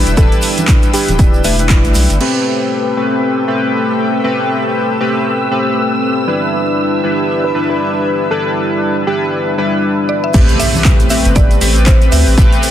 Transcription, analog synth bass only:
0.07 0.15 E1 medium
0.17 0.29 E1 loud
1.08 1.41 D1 medium
1.44 1.84 E1 medium
1.85 1.93 G1 medium
1.95 2.07 B1 medium
2.10 2.18 G1 medium
10.34 10.46 A1 loud
11.25 11.58 G1 medium
11.61 12.09 A1 medium
12.12 12.24 D2 loud
12.27 12.35 A1 medium
12.38 12.49 A1 loud

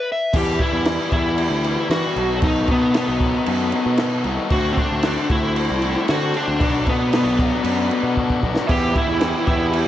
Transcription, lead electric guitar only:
0.12 0.35 E5 medium
0.36 0.61 G4 loud
0.61 1.09 E4 loud
1.13 1.86 E4 loud
1.91 2.39 F#4 loud
2.44 2.67 D#4 loud
2.71 2.96 B3 medium
2.97 3.96 B3 medium
4.52 4.71 F#4 loud
4.72 4.78 C4 medium
4.79 5.27 D4 loud
5.31 6.05 E4 loud
6.10 6.33 F#4 loud
6.37 6.89 D4 loud
6.89 7.14 B3 medium
7.15 8.15 B3 medium
8.71 8.97 G4 loud
8.98 9.46 E4 loud
9.48 9.88 E4 loud

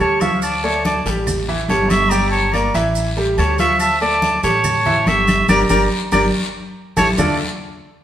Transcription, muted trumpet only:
0.00 0.23 C#5 loud
0.21 0.42 E5 medium
0.42 0.65 D5 medium
0.64 0.85 C#5 medium
0.85 1.05 D5 medium
1.69 1.92 C#5 loud
1.90 2.12 E5 loud
2.10 2.31 D5 loud
2.31 2.55 C#5 medium
2.53 2.75 D5 medium
3.39 3.58 C#5 loud
3.60 3.79 E5 loud
3.81 4.00 E5 loud
4.02 4.41 D5 loud
4.44 5.09 C#5 loud
5.08 5.49 E5 loud
5.49 5.59 D5 loud
5.70 5.80 D5 loud
6.12 6.22 D5 medium
6.98 7.08 C#5 loud
7.18 7.38 D5 medium

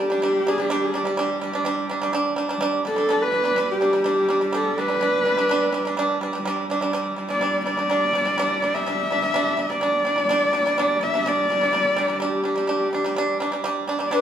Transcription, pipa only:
0.10 0.20 G3 medium
0.10 0.20 D4 medium
0.22 0.41 G3 medium
0.22 0.42 D4 medium
0.47 0.56 G3 medium
0.47 0.57 D4 medium
0.58 0.68 G3 medium
0.58 0.68 D4 medium
0.70 0.89 G3 loud
0.70 0.90 D4 loud
0.94 1.03 G3 medium
0.94 1.04 D4 medium
1.05 1.15 G3 medium
1.05 1.16 D4 medium
1.17 1.37 G3 loud
1.17 1.38 D4 loud
1.41 1.51 G3 medium
1.41 1.52 D4 medium
1.53 1.63 G3 medium
1.53 1.64 D4 medium
1.65 1.85 G3 medium
1.65 1.85 D4 loud
1.89 1.99 G3 medium
1.89 2.00 D4 medium
2.02 2.11 G3 medium
2.02 2.12 D4 medium
2.13 2.33 G3 medium
2.13 2.33 D4 loud
2.36 2.47 G3 medium
2.36 2.48 D4 medium
2.49 2.59 G3 medium
2.49 2.60 D4 medium
2.61 2.80 G3 loud
2.61 2.81 D4 loud
2.85 2.95 G3 medium
2.85 2.96 D4 medium
2.96 3.07 G3 medium
2.96 3.07 D4 medium
3.09 3.28 G3 medium
3.09 3.29 D4 medium
3.32 3.42 G3 medium
3.32 3.43 D4 medium
3.44 3.54 G3 medium
3.44 3.55 D4 medium
3.56 3.76 G3 medium
3.56 3.77 D4 medium
3.81 3.91 G3 medium
3.81 3.91 D4 medium
3.93 4.03 G3 medium
3.93 4.03 D4 medium
4.04 4.24 G3 medium
4.04 4.25 D4 medium
4.29 4.39 G3 medium
4.29 4.39 D4 medium
4.41 4.51 G3 medium
4.41 4.51 D4 medium
4.53 4.72 G3 medium
4.53 4.73 D4 loud
4.78 4.87 G3 medium
4.78 4.88 D4 medium
4.88 4.98 G3 medium
4.88 4.99 D4 medium
5.01 5.20 G3 medium
5.01 5.21 D4 medium
5.25 5.35 G3 medium
5.25 5.36 D4 medium
5.37 5.47 G3 medium
5.37 5.48 D4 medium
5.49 5.69 G3 medium
5.49 5.69 D4 loud
5.72 5.83 G3 medium
5.72 5.83 D4 medium
5.85 5.95 G3 medium
5.85 5.96 D4 medium
5.97 6.16 G3 medium
5.97 6.17 D4 loud
6.21 6.31 G3 medium
6.21 6.32 D4 medium
6.33 6.43 G3 medium
6.33 6.44 D4 medium
6.45 6.65 G3 loud
6.45 6.66 D4 loud
6.70 6.79 G3 medium
6.70 6.80 D4 medium
6.81 6.91 G3 medium
6.81 6.91 D4 medium
6.93 7.12 G3 medium
6.93 7.13 D4 medium
7.16 7.26 G3 medium
7.16 7.27 D4 medium
7.29 7.38 G3 medium
7.29 7.39 D4 medium
7.41 7.60 G3 medium
7.41 7.61 D4 medium
7.66 7.75 G3 medium
7.66 7.76 D4 medium
7.77 7.87 G3 medium
7.77 7.88 D4 medium
7.90 8.09 G3 medium
7.90 8.09 D4 loud
8.13 8.23 G3 medium
8.13 8.24 D4 medium
8.25 8.35 G3 medium
8.25 8.36 D4 medium
8.38 8.57 G3 loud
8.38 8.57 D4 loud
8.62 8.71 G3 medium
8.62 8.72 D4 medium
8.75 8.83 G3 medium
8.75 8.84 D4 medium
8.86 9.05 G3 medium
8.86 9.05 D4 medium
9.11 9.19 G3 medium
9.11 9.20 D4 medium
9.22 9.31 G3 medium
9.22 9.32 D4 medium
9.34 9.53 G3 loud
9.34 9.53 D4 loud
9.57 9.67 G3 medium
9.57 9.67 D4 medium
9.70 9.79 G3 medium
9.70 9.80 D4 medium
9.81 10.00 G3 medium
9.81 10.01 D4 medium
10.05 10.14 G3 medium
10.05 10.15 D4 medium
10.16 10.26 G3 medium
10.16 10.27 D4 medium
10.29 10.48 G3 loud
10.29 10.49 D4 loud
10.53 10.62 G3 medium
10.53 10.63 D4 medium
10.66 10.75 G3 medium
10.66 10.75 D4 medium
10.78 10.96 G3 loud
10.78 10.97 D4 loud
11.01 11.10 G3 medium
11.01 11.11 D4 medium
11.14 11.23 G3 medium
11.14 11.24 D4 medium
11.26 11.45 G3 medium
11.26 11.45 D4 medium
11.50 11.59 G3 medium
11.50 11.60 D4 medium
11.61 11.71 G3 medium
11.61 11.71 D4 medium
11.73 11.92 G3 medium
11.73 11.93 D4 medium
11.96 12.06 G3 medium
11.96 12.07 D4 medium
12.08 12.18 G3 medium
12.08 12.19 D4 medium
12.20 12.40 G3 medium
12.20 12.40 D4 loud
12.44 12.54 G3 medium
12.44 12.54 D4 medium
12.56 12.66 G3 medium
12.56 12.67 D4 medium
12.67 12.87 G3 medium
12.67 12.88 D4 medium
12.93 13.02 G3 medium
12.93 13.03 D4 medium
13.04 13.14 G3 medium
13.04 13.15 D4 medium
13.16 13.36 G3 medium
13.16 13.37 D4 loud
13.40 13.50 G3 medium
13.40 13.51 D4 medium
13.52 13.62 G3 medium
13.52 13.63 D4 medium
13.64 13.83 G3 loud
13.64 13.84 D4 loud
13.87 13.98 G3 medium
13.87 13.98 D4 medium
13.99 14.09 G3 medium
13.99 14.10 D4 medium
14.11 14.21 G3 medium
14.11 14.21 D4 loud

